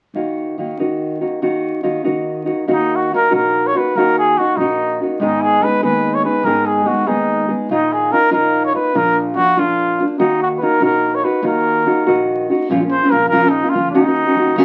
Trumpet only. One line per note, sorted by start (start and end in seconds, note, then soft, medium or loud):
2.73 2.97 D#4 medium
2.96 3.14 F#4 medium
3.15 3.33 A#4 medium
3.35 3.68 A#4 medium
3.67 3.79 C#5 medium
3.77 3.98 B4 medium
3.96 4.18 A#4 medium
4.18 4.39 G#4 medium
4.38 4.58 F#4 medium
4.57 5.04 D#4 medium
5.22 5.44 D#4 medium
5.42 5.65 G#4 medium
5.64 5.83 B4 medium
5.84 6.16 B4 medium
6.15 6.24 C#5 medium
6.25 6.46 B4 medium
6.45 6.68 A#4 medium
6.66 6.89 G#4 medium
6.87 7.09 F#4 medium
7.07 7.55 D#4 medium
7.71 7.94 D#4 medium
7.93 8.13 G#4 medium
8.12 8.32 A#4 medium
8.33 8.62 A#4 medium
8.65 8.74 C#5 medium
8.75 8.98 B4 medium
8.97 9.17 A#4 medium
9.36 9.60 F#4 medium
9.59 10.05 F4 medium
10.20 10.39 D#4 medium
10.42 10.49 F#4 medium
10.58 10.65 B4 medium
10.64 10.83 A#4 medium
10.85 11.16 A#4 medium
11.15 11.26 C#5 medium
11.24 11.44 B4 medium
11.47 12.26 A#4 medium
12.91 13.12 C5 medium
13.10 13.28 A#4 medium
13.29 13.51 A#4 medium
13.49 13.71 D#4 medium
13.69 13.91 F4 medium
13.91 14.65 D#4 medium